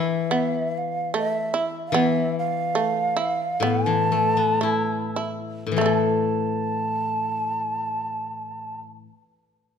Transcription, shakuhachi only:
0.00 0.79 E5 medium
0.77 1.16 F5 medium
1.18 1.72 E5 medium
1.87 1.97 F5 soft
1.96 2.35 E5 medium
2.38 3.68 F5 medium
3.67 5.21 A5 medium
5.79 5.93 G#5 medium
5.93 8.80 A5 medium

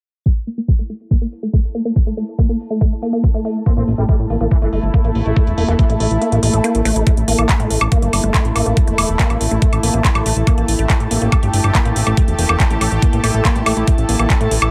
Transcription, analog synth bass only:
3.77 3.84 A1 medium
3.88 3.94 A1 loud
3.98 4.05 A1 medium
4.19 4.26 A2 medium
4.30 4.37 A1 loud
4.41 4.47 A1 medium
4.62 4.69 G1 medium
4.73 4.79 G1 loud
4.83 4.90 G1 loud
5.05 5.11 A1 medium
5.15 5.22 A1 loud
5.26 5.33 A1 medium
5.47 5.54 E1 medium
5.58 5.64 E1 loud
5.68 5.75 E1 medium
5.90 5.96 A1 medium
6.00 6.07 A1 loud
6.11 6.18 A1 medium
6.32 6.39 A1 medium
6.43 6.50 A1 loud
6.53 6.60 A1 medium
6.75 6.81 A1 medium
6.85 6.92 A1 loud
6.96 7.03 A1 medium
7.17 7.24 A1 medium
7.28 7.35 A1 loud
7.39 7.45 A1 medium
7.60 7.67 A2 medium
7.70 7.77 A1 loud
7.81 7.88 A1 medium
8.02 8.09 G1 medium
8.13 8.20 G1 loud
8.24 8.30 G1 medium
8.45 8.52 A1 medium
8.56 8.62 A1 loud
8.66 8.73 A1 medium
8.88 8.94 E1 medium
8.98 9.05 E1 loud
9.09 9.16 E1 loud
9.30 9.37 A1 medium
9.41 9.47 A1 loud
9.51 9.58 A1 medium
9.73 9.79 A1 medium
9.83 9.90 A1 loud
9.94 10.01 A1 loud
10.15 10.22 A1 medium
10.26 10.33 A1 loud
10.36 10.43 A1 medium
10.58 10.64 A1 medium
10.68 10.75 A1 loud
10.79 10.86 A1 medium
11.00 11.07 A2 medium
11.11 11.18 A1 loud
11.22 11.28 A1 medium
11.43 11.50 G1 medium
11.53 11.60 G1 loud
11.64 11.71 G1 medium
11.85 11.92 A1 medium
11.96 12.03 A1 loud
12.07 12.13 A1 medium
12.28 12.35 E1 medium
12.39 12.45 E1 loud
12.49 12.56 E1 medium
12.70 12.77 A1 medium
12.81 12.88 A1 loud
12.92 12.99 A1 medium
13.13 13.20 A1 medium
13.24 13.30 A1 loud
13.34 13.41 A1 medium
13.56 13.62 A1 medium
13.66 13.73 A1 loud
13.77 13.84 A1 medium
13.98 14.05 A1 medium
14.09 14.16 A1 loud
14.19 14.26 A1 medium
14.41 14.47 A2 medium
14.51 14.58 A1 loud
14.62 14.69 A1 medium

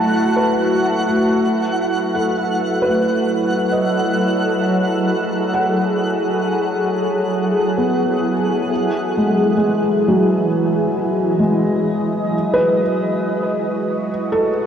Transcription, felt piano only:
0.00 2.27 F#3 soft
0.00 1.09 A3 medium
0.00 0.13 F#5 medium
0.00 2.66 A5 medium
0.36 2.33 B4 medium
1.09 2.86 A3 soft
2.15 3.01 A4 medium
2.82 5.57 B4 medium
2.87 5.62 A3 soft
3.72 5.72 D#5 medium
5.54 8.33 F#5 medium
7.77 9.34 B3 medium
9.17 9.55 G#3 soft
9.57 11.38 G#3 soft
10.08 12.81 F#3 medium
11.39 14.10 G#3 medium
12.54 14.50 B4 medium
14.32 14.66 A4 medium

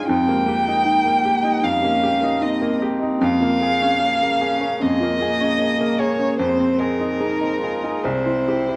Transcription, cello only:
0.07 0.47 C4 medium
0.46 1.66 A#3 medium
1.64 2.43 C#4 medium
2.42 4.01 C4 medium
4.02 4.43 A#3 medium
4.41 4.82 C#4 medium
4.80 5.21 C4 medium
5.20 6.41 A#3 medium
6.40 7.22 C4 medium
7.20 7.61 D#4 medium
7.62 8.06 F4 medium
8.04 8.76 E4 medium

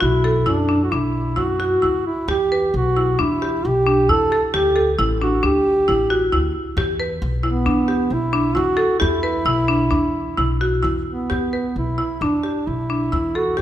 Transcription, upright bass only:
0.02 0.42 B1 medium
0.46 0.87 F#2 medium
0.93 1.33 B1 medium
1.37 1.78 F#2 medium
1.83 2.04 D2 medium
2.28 2.69 E2 medium
2.74 3.15 B1 medium
3.20 3.60 E2 medium
3.65 4.05 B1 medium
4.09 4.29 E2 medium
4.54 4.94 D2 medium
4.99 5.39 A1 loud
5.44 5.83 D2 medium
5.89 6.28 A1 medium
6.33 6.52 D2 medium
6.77 7.17 E2 loud
7.22 7.62 B1 loud
7.66 8.06 E2 medium
8.10 8.51 B1 medium
8.57 8.77 E2 medium
9.01 9.42 E2 medium
9.45 9.87 B1 medium
9.92 10.33 E2 medium
10.38 10.79 B1 medium
10.84 11.05 E2 medium
11.31 11.51 E2 medium
11.76 11.96 B1 medium
12.21 12.42 E2 medium
12.67 13.08 B1 medium
13.13 13.53 E2 medium
13.58 13.62 E2 medium

